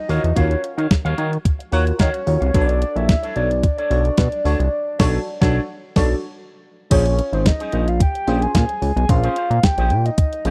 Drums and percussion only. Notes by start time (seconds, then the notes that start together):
0.09 open hi-hat
0.24 closed hi-hat
0.36 kick, closed hi-hat
0.51 closed hi-hat
0.64 closed hi-hat
0.79 closed hi-hat
0.91 kick, snare, closed hi-hat
1.06 closed hi-hat
1.18 closed hi-hat
1.33 closed hi-hat
1.45 kick, closed hi-hat
1.60 closed hi-hat
1.72 closed hi-hat
1.87 closed hi-hat
1.99 kick, snare, closed hi-hat
2.14 closed hi-hat
2.27 open hi-hat
2.42 closed hi-hat
2.54 kick, closed hi-hat
2.69 closed hi-hat
2.82 closed hi-hat
2.96 closed hi-hat
3.09 kick, snare, closed hi-hat
3.23 closed hi-hat
3.36 closed hi-hat
3.51 closed hi-hat
3.63 kick, closed hi-hat
3.78 closed hi-hat
3.91 closed hi-hat
4.05 closed hi-hat
4.17 kick, snare, closed hi-hat
4.32 closed hi-hat
4.45 open hi-hat
4.60 closed hi-hat
5.00 kick, snare, crash
5.41 kick, snare
5.96 kick, snare, crash
6.91 kick, closed hi-hat, crash
7.06 closed hi-hat
7.19 closed hi-hat
7.33 closed hi-hat
7.46 kick, snare, closed hi-hat
7.60 closed hi-hat
7.72 closed hi-hat
7.88 closed hi-hat
8.00 kick, closed hi-hat
8.15 closed hi-hat
8.28 closed hi-hat
8.42 closed hi-hat
8.55 kick, snare, closed hi-hat
8.69 closed hi-hat
8.82 open hi-hat
8.97 closed hi-hat
9.09 kick, closed hi-hat
9.24 closed hi-hat
9.36 closed hi-hat
9.51 closed hi-hat
9.63 kick, snare, closed hi-hat
9.78 closed hi-hat
9.90 closed hi-hat
10.06 closed hi-hat
10.18 kick, closed hi-hat
10.33 closed hi-hat
10.45 closed hi-hat